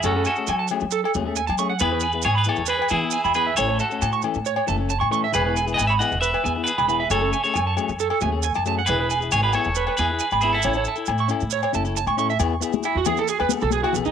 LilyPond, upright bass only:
\new Staff \with { instrumentName = "Upright bass" } { \clef bass \time 4/4 \key e \major \tempo 4 = 136 fis,8 r8 fis8 r16 fis8 r16 dis,8. fis8. | e,4 gis,8 r16 e,8 r16 e8 r16 e,8. | a,,8 r8 a,8 r16 a,8 r16 fis,,8. a,8. | e,,4 gis,,8 r16 e,,8 r16 e,8 r16 e,,8. |
fis,,8 r8 fis,8 r16 fis,8 r16 dis,8. fis,8. | e,,4 gis,,8 r16 e,,8 r16 e,8 r16 gis,,8. | a,,8 r8 a,8 r16 a,8 r16 fis,,8. a,8. | e,8 r8. e,8 r8 e,16 r16 b,,8 r16 b,,16 e16 | }